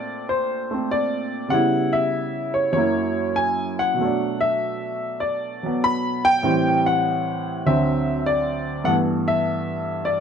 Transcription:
Already playing: A#2 A3 C4 D4 D5
0.29 C5
0.71 A3 C4
0.91 D5
1.48 C#3 G3 B3 F#5
1.53 E4
1.93 E5
2.54 C#5
2.72 F#2 F#3 A#3 C#5
2.78 E4
3.36 G#5
3.79 F#5
3.94 B2 F#3
4.01 A3 D4
4.41 E5
5.20 D5
5.63 F#3 B3
5.84 B5
6.25 G5
6.43 A2 E3 G3 C4
6.86 F#5
7.66 D2 D3 F#3 C4 E5
8.26 D5
8.84 G2 E3 A3 B3 F#5
9.28 E5
10.05 D5

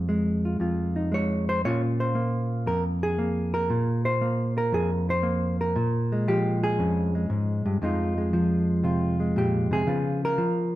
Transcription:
Already playing: F2
0.09 G#3
0.45 F4
0.60 F2 F4
0.96 D#4
1.12 G#3 C#5
1.49 C5
1.65 A#2 A#3 C#4 F4 C#5
2.00 C5
2.15 A#3
2.66 F2 A#4
3.03 G#4
3.18 A#3
3.54 A#4
3.70 A#2
4.05 C5
4.21 A#3
4.58 A#4
4.72 F2 G#4
5.10 C5
5.23 A#3
5.61 A#4
5.76 A#2
6.12 G#3
6.28 F3 G4
6.63 G#4
6.79 F2 C#4
7.15 G#3
7.30 G#2
7.66 G2
7.82 F2 F3 G#3 D#4 F4
8.18 G#3
8.33 F3
8.83 C3 F4
9.20 G#3
9.36 A#2 G4
9.71 C3 G#4
9.87 C#3 F3 B3 F4
10.25 A#4
10.38 F3

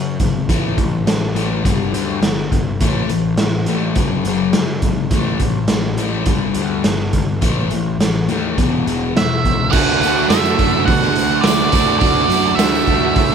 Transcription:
Already playing: F#2 C#3
0.20 G#1 F#2 C#3, kick, closed hi-hat
0.49 A1 A2 E3 A3, kick, closed hi-hat
0.78 A1 A2 E3, kick, closed hi-hat
1.05 A1 A2 E3, snare, closed hi-hat
1.34 A1 A2 E3 A3, closed hi-hat
1.64 G1 G2 D3 G3, kick, closed hi-hat
1.92 D2 G2 D3 G3, closed hi-hat
2.22 G1 G2 D3, snare, closed hi-hat
2.52 G1 G2 D3, kick, closed hi-hat
2.80 A1 A2 E3 A3, kick, closed hi-hat
3.08 A1 A2 E3, closed hi-hat
3.37 A1 A2 E3, snare, closed hi-hat
3.66 A1 A2 E3 A3, closed hi-hat
3.95 F#1 F#2 C#3 F#3, kick, closed hi-hat
4.24 F#1 F#2, closed hi-hat
4.29 C#3 F#3
4.53 F#2, snare, closed hi-hat
4.57 C#3
4.82 G#1 F#2 C#3, kick, closed hi-hat
5.11 A1 A2 E3 A3, kick, closed hi-hat
5.40 A1 A2 E3, kick, closed hi-hat
5.68 A1 A2 E3, snare, closed hi-hat
5.97 A1 A2 E3 A3, closed hi-hat
6.26 G1 G2 D3 G3, kick, closed hi-hat
6.54 D2 G2 D3 G3, closed hi-hat
6.83 G1 G2 D3, snare, closed hi-hat
7.13 G1 G2 D3, kick, closed hi-hat
7.41 A1 A2 E3 A3, kick, closed hi-hat
7.71 A1 A2 E3, closed hi-hat
7.99 A1 A2 E3, snare, closed hi-hat
8.28 D#2 A2 E3 A3, closed hi-hat
8.57 E1 E2 B2 E3, kick, closed hi-hat
8.86 E1 E2 B2 E3, closed hi-hat
9.14 E2 B2 E5, snare, closed hi-hat
9.45 C#2 E2 B2, kick, closed hi-hat
9.72 D2 D3 A3 D4 E4 F#4 D5 F#5, kick, crash
9.76 A4
10.00 D2 A3 D4 F#5, open hi-hat, tambourine
10.05 F#4 A4
10.16 D4 F#4 A4
10.29 F#2 D3 A3 D4 E5, snare, open hi-hat, tambourine
10.33 F#4 A4
10.45 tambourine
10.59 F#2 A3 D4 F#4 A4, kick, open hi-hat
10.73 D4 F#4 A4
10.86 B2 F#5, kick, open hi-hat
11.02 F#4 A4, snare
11.06 D4
11.15 D2, open hi-hat, tambourine
11.31 D4 F#4 A4
11.41 D5, snare, open hi-hat
11.45 D2 D3 A3 D4 F#4, tambourine
11.49 A4
11.61 D4 F#4 A4
11.72 D2 D3 A3 D4 F#4, kick, open hi-hat, tambourine
11.76 A4
11.88 D4 F#4 A4
11.99 D2 D3 D4 E4 F#4 D5, kick, open hi-hat
12.04 A3 D4 F#4 A4
12.29 F#2 A3, open hi-hat, tambourine
12.33 D4 F#4 A4
12.46 D4 F#4 A4, tambourine
12.55 D2 E5, snare, open hi-hat
12.59 D3 A3 D4 F#4 A4, tambourine
12.75 tambourine
12.87 D2 A3 D4 F#4, kick, open hi-hat
12.92 A4
13.04 D4 F#4 A4
13.16 A2, kick, open hi-hat
13.31 A4, snare

